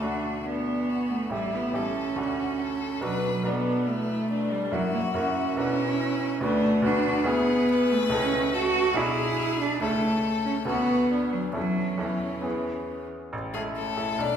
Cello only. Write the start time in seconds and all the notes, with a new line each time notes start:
0.02 D4
0.45 B3
1.10 A3
1.31 G3
1.54 B3
1.75 C#4
3.03 F#3
3.46 B3
3.87 A3
4.51 G3
4.72 F#3
4.93 A#3
5.15 C#4
6.42 A3
6.86 D4
7.26 B3
7.91 A3
8.12 C#4
8.54 F#4
8.96 E4
9.59 D4
9.81 A3
10.45 C#4
10.68 B3
11.32 F#3
11.55 F#3
11.99 E3
13.54 G#3
13.75 A3
14.19 D4